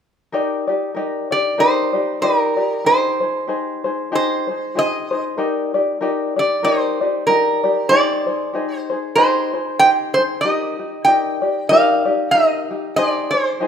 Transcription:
0.32 D#4 G4 A#4 D5
0.67 D#4 G4 D5
0.94 D#4 G4 A#4 D5
1.31 D#4 G4 D5
1.58 D#4 G4 A#4 C5 D5
1.93 D#4 G4 D5
2.21 D#4 G4 A#4 D5
2.56 D#4 G4 D5
2.85 D#4 G4 G#4 C5
3.20 D#4 G#4 C5
3.47 D#4 G4 G#4 C5
3.84 D#4 G#4 C5
4.12 D#4 G4 G#4 C5
4.47 D#4 G#4 C5
4.75 D#4 G4 G#4 C5 D#5
5.11 D#4 G#4 C5
5.37 D#4 G4 A#4 D5
5.74 D#4 G4 D5
6.01 D#4 G4 A#4 D5
6.36 D#4 G4 D5
6.63 D#4 G4 A#4 C5 D5
7.01 D#4 G4 D5
7.27 D#4 G4 A#4 D5
7.64 D#4 G4 D5
7.89 D#4 G4 G#4 C5 D5
8.27 D#4 G#4 C5
8.53 D#4 G4 G#4 C5
8.78 C5
8.90 D#4 G#4 C5
9.15 D#4 G4 G#4 C5
9.54 D#4 G#4 C5
9.79 D#4 G4 G#4 C5 G5
10.14 G#4 C5
10.19 D#4
10.41 D#4 A#4 D#5
10.45 G4
10.79 D#4 G4
11.05 D#4 G4 A#4 D5 G5
11.42 D#4 G4 D5
11.69 D#4 G4 A#4 D5 F5
12.05 D#4 G4 D5
12.31 D#4 G4 A#4 D#5
12.71 D#4 G4
12.96 D#4 G4 G#4 C5 D5
13.31 G#4 C5
13.35 D#4
13.60 D#4 G4 G#4 C5

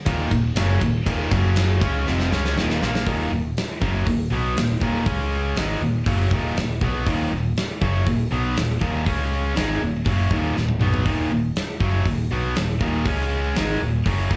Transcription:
0.06 D#1 D#2 A#2 D#3, kick, ride
0.31 D#1 D#2 A#2, kick, ride
0.55 F#1 F#2 C#3 F#3, snare, ride
0.81 D#1 D#2 A#2, kick, ride
1.06 D#1 D#2 A#2 D#3, kick, ride
1.31 F#1 F#2 C#3 F#3, kick, ride
1.56 snare, ride
1.81 C#2 C#3 G#3 C#4, kick, ride
2.06 F1 F2 C3 F3, snare
2.20 snare
2.31 C#2 C#3 G#3 C#4, snare
2.45 snare
2.56 D#1 D#2 A#2 D#3, snare
2.70 snare
2.81 A#1 A#2 F3 A#3, snare
2.95 snare
3.06 D#1 D#2 A#2 D#3, kick, open hi-hat
3.32 D#1 D#2 A#2
3.57 snare, open hi-hat
3.81 F#1 F#2 C#3 F#3, kick
4.06 D#1 D#2 A#2, kick, open hi-hat
4.30 B1 B2 F#3 B3
4.56 D#1 D#2 A#2, snare, open hi-hat
4.80 D#1 D#2 A#2 D#3, kick
5.05 C#2 C#3 G#3 C#4, kick, open hi-hat
5.56 G#1 G#2 D#3 G#3, snare, open hi-hat
5.80 D#1 D#2 A#2
6.06 F#1 F#2 C#3 F#3, kick, open hi-hat
6.31 D#1 D#2 A#2 D#3, kick
6.56 D#1 D#2 A#2, snare, open hi-hat
6.81 B1 B2 F#3 B3, kick
7.07 D#1 D#2 A#2 D#3, kick, open hi-hat
7.31 D#1 D#2 A#2
7.57 snare, open hi-hat
7.81 F#1 F#2 C#3 F#3, kick
8.07 D#1 D#2 A#2, kick, open hi-hat
8.31 B1 B2 F#3 B3
8.57 D#1 D#2 A#2, snare, open hi-hat
8.81 D#1 D#2 A#2 D#3, kick
9.05 C#2 C#3 G#3 C#4, kick, open hi-hat
9.55 G#1 G#2 D#3 G#3, snare, open hi-hat
9.81 D#1 D#2 A#2
10.05 F#1 F#2 C#3 F#3, kick, open hi-hat
10.30 D#1 D#2 A#2 D#3, kick
10.55 D#1 D#2 A#2, snare
10.69 mid tom
10.79 B1 B2 F#3 B3, mid tom
10.94 floor tom
11.05 D#1 D#2 A#2 D#3, kick, open hi-hat
11.31 D#1 D#2 A#2
11.56 snare, open hi-hat
11.80 F#1 F#2 C#3 F#3, kick
12.05 D#1 D#2 A#2, kick, open hi-hat
12.31 B1 B2 F#3 B3
12.56 D#1 D#2 A#2, snare, open hi-hat
12.80 D#1 D#2 A#2 D#3, kick
13.06 C#2 C#3 G#3 C#4, kick, open hi-hat
13.55 G#1 G#2 D#3 G#3, snare, open hi-hat
13.81 D#1 D#2 A#2
14.06 F#1 F#2 C#3 F#3, kick, open hi-hat
14.30 D#1 D#2 A#2 D#3, kick

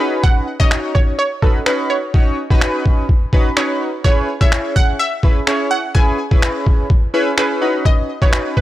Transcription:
Already playing: D#5
0.00 C#4 D#4 F#4 B4
0.23 F#5, kick
0.60 C#4 D#4 F#4 C#5 D#5, kick
0.71 finger snap
0.95 C#5, kick
1.19 C#5
1.42 C#4 D#4 F#4 A4 B4, kick
1.66 C#4 D#4 F#4 B4, finger snap
1.90 C#5
2.14 C#4 D#4 F#4 C#5, kick
2.50 C#4 D#4 F#4 B4, kick
2.61 finger snap
2.86 kick
3.09 kick
3.33 C#4 D#4 F#4 B4, kick
3.57 C#4 D#4 F#4 B4 C#5, finger snap
4.04 C#4 E4 G#4 B4 C#5, kick
4.41 C#4 E4 G#4 C#5 E5, kick
4.52 finger snap
4.76 F#5, kick
4.99 E5
5.23 C#4 E4 G#4 B4, kick
5.47 C#4 E4 G#4 C#5, finger snap
5.71 F#5
5.95 C#4 E4 G#4 B4 G#5, kick
6.31 C#4 E4 G#4 B4, kick
6.42 finger snap
6.67 kick
6.90 kick
7.14 C#4 E4 G#4 B4
7.38 C#4 E4 G#4 B4, finger snap
7.61 C#4 D#4 F#4 B4
7.85 D#5, kick
8.22 C#4 D#4 F#4 B4 C#5, kick
8.33 finger snap
8.57 B4, kick

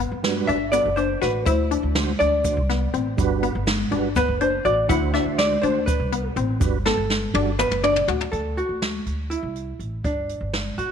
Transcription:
0.00 B3
0.12 G1
0.23 G3 D4 F#4 B4, snare, closed hi-hat
0.47 G1 D4 E5, closed hi-hat
0.71 G3 B3 D4 F#4 A4 D5, closed hi-hat, shaker
0.85 F#1
0.96 D4 C5, closed hi-hat, shaker
1.22 A1 F#4 B4, snare, closed hi-hat, shaker
1.46 D2 E4 C5, kick, closed hi-hat, shaker
1.71 D4, closed hi-hat
1.83 D2
1.95 D3 D4 F#4 C5, snare, closed hi-hat, shaker
2.19 D2 D4 D5, closed hi-hat
2.44 D3 D4 F#4 C5, kick, closed hi-hat, shaker
2.57 C2
2.69 B3, snare, closed hi-hat
2.94 A1 C4, closed hi-hat
3.17 G1 G3 D4 F#4 B4, kick, closed hi-hat, shaker
3.43 B3, closed hi-hat
3.55 G1
3.67 snare, closed hi-hat, shaker
3.91 G1 G3 D4 F#4 B4, closed hi-hat
4.16 B3 B4, kick, snare, closed hi-hat, shaker
4.28 F#1
4.41 D4 C5, closed hi-hat
4.65 A1 F#4 D5, closed hi-hat, shaker
4.88 D2 D3 D4 E4 F#4 C5 F#5, kick, closed hi-hat, shaker
5.14 D4 E5, snare, closed hi-hat
5.26 D2
5.38 D5, snare, closed hi-hat, shaker
5.61 D2 D3 D4 F#4 C5, closed hi-hat
5.86 B4, kick, closed hi-hat, shaker
6.00 C2
6.12 B3, closed hi-hat
6.36 A1 C4, closed hi-hat, shaker
6.60 G1 G3 D4 F#4 B4, kick, closed hi-hat, shaker
6.85 B3 A4, snare
6.97 G1
7.10 snare
7.34 G1 G3 D4 F#4 D5, high tom
7.59 B3 B4, mid tom, shaker
7.71 F#1, mid tom
7.84 D4 D5, mid tom, shaker
7.96 floor tom
8.08 D2 F#4, floor tom
8.21 floor tom
8.32 D2 A4, kick, closed hi-hat
8.57 F#4, closed hi-hat
8.69 D2
8.82 snare, closed hi-hat
9.06 D2, closed hi-hat
9.30 E4, closed hi-hat
9.43 C2
9.56 closed hi-hat
9.79 A1, closed hi-hat
10.04 G1 D4, kick, closed hi-hat
10.29 closed hi-hat
10.41 G1
10.54 snare, closed hi-hat
10.78 G1 F#4, closed hi-hat

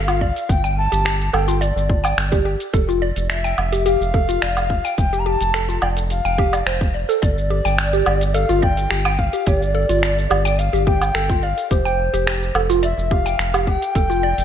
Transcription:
Already playing: G1 F5
0.08 F4, closed hi-hat, low woodblock, shaker
0.21 D5, kick
0.36 closed hi-hat, shaker
0.49 G1 G5, kick, closed hi-hat, shaker
0.64 G5, shaker
0.78 A5
0.92 G1 G4, closed hi-hat, shaker
1.05 G4, finger snap, closed hi-hat, shaker
1.21 shaker
1.33 G1 A4 G5, low woodblock
1.48 F4, closed hi-hat, shaker
1.61 D5, closed hi-hat, shaker
1.76 G1, shaker
1.90 kick
2.04 G5, closed hi-hat, low woodblock, shaker
2.18 G1, finger snap, closed hi-hat, shaker
2.32 G4, kick, closed hi-hat, shaker
2.45 G4
2.60 closed hi-hat, shaker
2.73 F1 A4, kick, closed hi-hat, shaker
2.89 F4, shaker
3.02 D5
3.16 F1, closed hi-hat, shaker
3.30 E5, finger snap, closed hi-hat, shaker
3.44 G5, shaker
3.58 F1, low woodblock
3.72 G4, closed hi-hat, shaker
3.86 G4 F5, closed hi-hat, shaker
4.01 F1, shaker
4.14 A4, kick
4.29 F4, closed hi-hat, shaker
4.42 F1 D5, finger snap, closed hi-hat, shaker
4.57 closed hi-hat, low woodblock, shaker
4.70 kick
4.85 G5, closed hi-hat, shaker
4.98 F1 G5, kick, closed hi-hat, shaker
5.13 G4, shaker
5.19 A#5
5.26 G4 A5
5.41 F1, closed hi-hat, shaker
5.54 A4, finger snap, closed hi-hat, shaker
5.69 F4, shaker
5.82 F1 D5 G5, low woodblock
5.97 closed hi-hat, shaker
6.10 F5, closed hi-hat, shaker
6.25 F1 G5, shaker
6.38 G4, kick
6.53 D5, closed hi-hat, low woodblock, shaker
6.66 F1 C5, finger snap, closed hi-hat, shaker
6.81 kick, closed hi-hat, shaker
6.94 D5
7.09 A4, closed hi-hat, shaker
7.22 G1 D5, kick, closed hi-hat, shaker
7.38 shaker
7.50 G4
7.65 G1 G5, closed hi-hat, shaker
7.79 finger snap, closed hi-hat, shaker
7.93 G4, shaker
8.06 G1 G4, low woodblock
8.21 closed hi-hat, shaker
8.34 A4 F5, closed hi-hat, shaker
8.49 G1 F4, shaker
8.62 D5 G5, kick
8.77 closed hi-hat, shaker
8.91 G1 G4, finger snap, closed hi-hat, shaker
9.05 G5, closed hi-hat, low woodblock, shaker
9.19 F5, kick
9.33 G4, closed hi-hat, shaker
9.46 G1 G4 D5, kick, closed hi-hat, shaker
9.62 shaker
9.75 A4
9.89 G1 F4, closed hi-hat, shaker
10.03 D5, finger snap, closed hi-hat, shaker
10.18 shaker
10.30 G1 G4, low woodblock
10.45 G5, closed hi-hat, shaker
10.59 F5, closed hi-hat, shaker
10.73 G1 G4, shaker
10.87 G4 G5, kick
11.02 closed hi-hat, low woodblock, shaker
11.15 G1 A4, finger snap, closed hi-hat, shaker
11.30 F4, kick, closed hi-hat, shaker
11.43 D5 F5
11.58 closed hi-hat, shaker
11.71 F1 G4 C5, kick, closed hi-hat, shaker
11.85 G5, shaker
12.14 F1 G4, closed hi-hat, shaker
12.27 G4, finger snap, closed hi-hat, shaker
12.43 shaker
12.55 F1 A4, low woodblock
12.70 F4, closed hi-hat, shaker
12.83 D5 E5, closed hi-hat, shaker
12.98 F1, shaker
13.11 G4 F5, kick
13.26 G5, closed hi-hat, shaker
13.39 F1, finger snap, closed hi-hat, shaker
13.54 G4, closed hi-hat, low woodblock, shaker
13.67 G4 G5, kick
13.82 closed hi-hat, shaker
13.95 F1 A4, kick, closed hi-hat, shaker
14.10 F4, shaker
14.23 D5
14.38 F1, closed hi-hat, shaker

